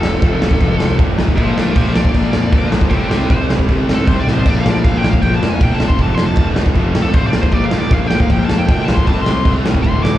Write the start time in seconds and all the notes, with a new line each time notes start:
Already playing: F2 C3 F3 A4
0.00 F1, snare
0.22 F1 F2 C3 F3, kick, crash
0.41 F1 F2 C3 F3, snare
0.51 kick
0.59 F1 F2 C3 F3, kick, crash
0.80 C2, snare
0.98 F1 F2 C3 F3, kick, crash
1.17 A#1 A#2 F3 A#3, snare
1.28 kick
1.37 A#1 A#2 F3 A#3 C5 F5, kick, crash
1.56 A#1 A#4 D5, snare
1.75 A#1 A#2 F3 A#3 G4 C5, kick, crash
1.93 A#2 F3 A#3 D5, snare
2.05 kick
2.12 A#1 A#2 F3 A#3, kick, crash
2.33 F2, snare
2.52 D2 A#2 F3 A#3, kick, crash
2.71 A#1 A#2 F3 A#3, snare
2.81 kick
2.90 C2 C3 G3 C4 A4 D5, kick, crash
3.09 C2 G4 C5, snare
3.30 C2 C3 G3 C4 C5, kick, crash
3.49 C2 C3 G3 C4, snare
3.59 kick
3.68 C2 C3 G3 C4, kick, crash
3.88 G1, snare
3.94 A4
4.07 C2 C3 G3 C4 C5, kick, crash
4.20 D5
4.27 A1 C3 G3 C4, snare
4.34 C5
4.46 A#1 A#2 F3 A#3 D5, kick, splash, crash
4.60 F5
4.66 A#1, snare
4.71 D5
4.84 A#1 A#2 F3 A#3 F5, kick, crash
4.97 G5
5.03 A#2 F3 A#3, snare
5.10 F5, kick
5.22 A#1 A#2 F3 A#3 G5, kick, crash
5.36 A5
5.42 F2, snare
5.48 G#5
5.60 E1 A#2 F3 A#3 G5, kick, crash
5.75 A5
5.79 F1 F2 C3 F3, snare
5.88 C6, kick
5.98 F1 F2 C3 F3 A5, kick, crash
6.14 F1 C6, snare
6.26 A5
6.36 F1 F2 C3 F3, kick, crash
6.55 F1 F2 C3 F3, snare
6.66 kick
6.75 F1 F2 C3 F3, kick, crash
6.93 C2, snare
7.02 A4
7.13 A1 F2 C3 F3 C5, kick, crash
7.27 D5
7.31 A#1 A#2 F3 A#3, snare
7.41 C5, kick
7.52 A#1 A#2 F3 A#3 D5, kick, crash
7.65 F5
7.71 A#1, snare
7.79 D5
7.90 A#1 A#2 F3 A#3 F5, kick, crash
8.07 A#2 F3 G5, snare
8.11 A#3
8.20 F5, kick
8.29 A#1 A#2 F3 A#3 G5, kick, crash
8.45 A5
8.49 F2, snare
8.59 G5
8.68 D2 A#2 F3 A#3 G5, kick, crash
8.85 A#1 A#2 F3 A#3 A5, snare
8.94 C6, kick
9.06 C2 C3 G3 C4 A5, kick, crash
9.21 C6
9.26 C2, snare
9.32 C6
9.44 C2 C3 G3 C4, kick, crash
9.64 C2 C3 G3 C4, snare
9.75 kick
9.82 D1 D2 A2 D3 C6, kick, crash
10.03 A1 D6, snare